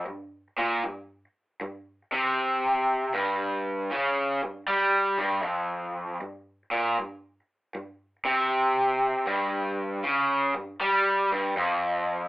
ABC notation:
X:1
M:4/4
L:1/8
Q:"Swing" 1/4=78
K:Gm
V:1 name="Overdriven electric guitar" clef=bass
G,, B,, G,, z G,, C,3 | G,,2 ^C, G,, G, G,, F,,2 | G,, B,, G,, z G,, C,3 | G,,2 ^C, G,, G, G,, F,,2 |]